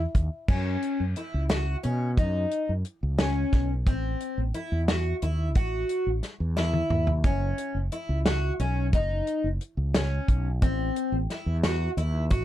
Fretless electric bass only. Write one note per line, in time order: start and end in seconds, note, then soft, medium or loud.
0.15 0.28 D#2 medium
0.48 0.76 F#2 medium
1.00 1.13 F#2 medium
1.34 1.75 C#2 medium
1.85 2.19 B2 medium
2.17 2.45 F#2 medium
2.69 2.82 F#2 medium
3.03 3.44 C#2 medium
3.53 3.87 B1 medium
3.87 4.14 A1 medium
4.38 4.51 A1 medium
4.72 5.12 E2 medium
5.22 5.56 D#2 medium
5.56 5.83 A1 medium
6.07 6.20 A1 medium
6.40 6.81 E2 medium
6.90 7.26 D#2 medium
7.24 7.52 F#1 medium
7.75 7.88 F#1 medium
8.09 8.50 C#2 medium
8.60 8.95 B1 medium
8.93 9.21 F#1 medium
9.44 9.58 F#1 medium
9.77 10.18 C#2 medium
10.28 10.62 B1 medium
10.62 10.89 A1 medium
11.12 11.26 A1 medium
11.46 11.87 E2 medium
11.97 12.33 D#2 medium
12.31 12.45 A1 medium